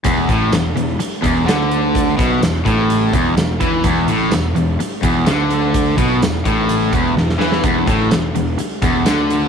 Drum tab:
HH |x-x-x-x-x-x-x-x-|x-x-x-x-x-x-x-x-|x-x-x-x-x-x-x-x-|x-x-x-x-x-x-----|
TB |----x-------x---|----x-------x---|----x-------x---|----x-----------|
SD |----o-------o---|----o-------o---|----o-------o---|----o-------oooo|
BD |o-o-------o-----|o-o---o---o---o-|o---------o-----|o-o---o---o-----|

HH |x-x-x-x-x-x-x-x-|
TB |----x-------x---|
SD |----o-------o---|
BD |o-o-------o-----|